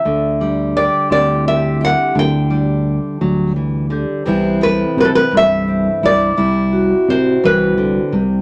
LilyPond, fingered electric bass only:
\new Staff \with { instrumentName = "Fingered electric bass" } { \clef bass \time 6/8 \key c \lydian \tempo 4. = 57 d,4. d,4. | d,4. d,4. | c,4 c8 c,4 c,8 | c,4 c8 c,4 c,8 | }